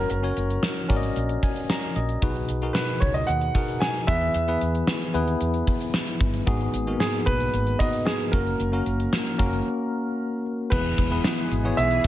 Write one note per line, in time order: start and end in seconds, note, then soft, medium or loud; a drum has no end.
0.00 0.15 C#4 medium
0.00 0.15 F#4 medium
0.00 0.15 A#4 medium
0.00 0.16 C#5 medium
0.10 0.30 F#1 medium
0.10 1.92 A#4 medium
0.10 closed hi-hat medium
0.23 0.66 C#4 medium
0.23 0.66 F#4 medium
0.23 0.67 A#4 medium
0.23 0.67 C#5 medium
0.23 closed hi-hat soft
0.37 0.57 F#1 medium
0.37 closed hi-hat medium
0.50 closed hi-hat medium
0.63 snare loud
0.77 closed hi-hat medium
0.89 1.10 G#1 medium
0.89 1.58 C#4 medium
0.89 1.59 F#4 medium
0.89 1.59 A#4 medium
0.89 0.96 D5 medium
0.89 kick medium
0.89 closed hi-hat medium
0.97 1.62 D#5 medium
1.03 closed hi-hat medium
1.16 1.36 A#1 medium
1.16 closed hi-hat medium
1.29 closed hi-hat soft
1.43 1.68 G#5 medium
1.43 kick medium
1.43 closed hi-hat medium
1.56 closed hi-hat soft
1.70 1.94 A#5 medium
1.70 snare loud
1.83 closed hi-hat medium
1.96 2.16 A#1 medium
1.96 2.21 D#5 medium
1.96 closed hi-hat medium
2.09 closed hi-hat soft
2.22 2.42 B1 medium
2.22 2.98 B2 medium
2.22 2.48 D#4 medium
2.22 2.49 F#4 medium
2.22 2.49 G#4 medium
2.22 2.49 B4 medium
2.22 kick loud
2.22 closed hi-hat medium
2.36 closed hi-hat soft
2.49 2.69 B1 medium
2.49 closed hi-hat medium
2.62 3.23 D#4 medium
2.62 3.23 F#4 medium
2.62 3.23 G#4 medium
2.62 3.23 A#4 medium
2.62 closed hi-hat medium
2.73 3.02 B4 medium
2.73 snare loud
2.88 closed hi-hat medium
3.00 3.22 C#2 medium
3.00 3.15 C#5 medium
3.00 kick medium
3.00 closed hi-hat medium
3.14 3.28 D#5 medium
3.14 closed hi-hat soft
3.27 3.48 D#2 medium
3.27 3.82 F#5 medium
3.27 closed hi-hat medium
3.41 closed hi-hat soft
3.54 4.07 D#4 medium
3.54 4.07 F#4 medium
3.54 4.07 G#4 medium
3.54 4.07 A#4 medium
3.54 kick medium
3.54 closed hi-hat medium
3.68 closed hi-hat soft
3.80 4.08 G#5 medium
3.80 snare loud
3.95 closed hi-hat medium
4.07 4.28 E2 medium
4.07 4.84 E3 medium
4.07 4.40 B3 medium
4.07 4.40 E4 medium
4.07 4.40 G#4 medium
4.07 4.41 B4 medium
4.07 4.57 E5 loud
4.07 kick loud
4.07 closed hi-hat medium
4.21 closed hi-hat soft
4.34 4.55 E2 medium
4.34 closed hi-hat medium
4.48 4.91 B3 medium
4.48 4.91 E4 medium
4.48 4.91 G#4 medium
4.48 4.92 B4 medium
4.48 closed hi-hat soft
4.61 4.81 E2 medium
4.61 closed hi-hat medium
4.75 closed hi-hat soft
4.87 snare loud
5.01 closed hi-hat medium
5.14 5.34 D#2 medium
5.14 5.83 B3 medium
5.14 5.84 E4 medium
5.14 5.84 G#4 medium
5.14 5.84 B4 medium
5.14 closed hi-hat medium
5.28 closed hi-hat medium
5.41 5.61 E2 medium
5.41 closed hi-hat medium
5.54 closed hi-hat soft
5.67 kick medium
5.67 closed hi-hat medium
5.81 closed hi-hat medium
5.94 snare loud
6.07 closed hi-hat medium
6.20 6.40 G1 medium
6.20 kick medium
6.20 closed hi-hat medium
6.34 closed hi-hat soft
6.46 6.67 G#1 loud
6.46 7.23 G#2 medium
6.46 6.73 B3 medium
6.46 6.73 D#4 medium
6.46 6.73 F#4 medium
6.46 6.73 G#4 loud
6.46 kick loud
6.46 closed hi-hat medium
6.61 closed hi-hat soft
6.73 6.93 G#1 loud
6.73 closed hi-hat medium
6.87 6.93 A#3 medium
6.87 7.48 D#4 medium
6.87 7.48 F#4 medium
6.87 7.48 A#4 medium
6.87 closed hi-hat medium
6.93 7.51 B3 medium
7.00 7.27 G#4 medium
7.00 snare loud
7.14 closed hi-hat medium
7.26 7.47 B1 medium
7.26 7.81 B4 loud
7.26 kick medium
7.26 closed hi-hat medium
7.40 closed hi-hat soft
7.54 7.73 G#1 medium
7.54 closed hi-hat medium
7.67 closed hi-hat soft
7.79 8.32 B3 medium
7.79 8.32 D#4 medium
7.79 8.32 F#4 medium
7.79 8.32 B4 medium
7.79 8.04 D#5 medium
7.79 kick medium
7.79 closed hi-hat medium
7.93 closed hi-hat medium
8.05 8.33 G#4 medium
8.05 snare loud
8.20 closed hi-hat medium
8.32 8.53 F#1 medium
8.32 8.65 A#3 medium
8.32 8.65 C#4 medium
8.32 8.65 F#4 medium
8.32 10.41 A#4 medium
8.32 8.65 A#4 medium
8.32 kick loud
8.32 closed hi-hat medium
8.46 closed hi-hat soft
8.60 8.79 F#1 medium
8.60 closed hi-hat medium
8.72 9.16 A#3 medium
8.72 9.16 C#4 medium
8.72 9.16 F#4 medium
8.72 9.16 A#4 medium
8.72 closed hi-hat soft
8.86 9.06 F#1 medium
8.86 closed hi-hat medium
9.00 closed hi-hat medium
9.13 snare loud
9.27 closed hi-hat medium
9.38 9.59 F#1 medium
9.38 10.08 A#3 medium
9.38 10.08 C#4 medium
9.38 10.08 F#4 medium
9.38 10.08 A#4 medium
9.38 kick medium
9.38 closed hi-hat medium
9.53 closed hi-hat soft
10.70 10.92 E1 medium
10.70 12.07 B2 medium
10.70 11.48 E3 medium
10.70 12.07 E3 medium
10.70 12.07 G#3 medium
10.70 10.98 B3 medium
10.70 10.98 E4 medium
10.70 12.07 E4 medium
10.70 10.98 G#4 medium
10.70 12.07 G#4 medium
10.70 11.73 B4 medium
10.70 10.98 B4 medium
10.70 kick loud
10.70 crash medium
10.98 11.18 E1 medium
10.98 kick medium
10.98 closed hi-hat medium
11.11 11.46 B3 medium
11.11 11.46 E4 medium
11.11 11.46 G#4 medium
11.11 11.46 B4 medium
11.24 snare loud
11.24 closed hi-hat medium
11.38 closed hi-hat medium
11.51 11.71 G#1 medium
11.51 closed hi-hat medium
11.64 11.91 B3 medium
11.64 11.91 E4 medium
11.64 11.91 G#4 medium
11.64 11.91 C#5 medium
11.77 11.98 B1 medium
11.77 12.07 E5 loud
11.77 closed hi-hat medium
11.91 closed hi-hat soft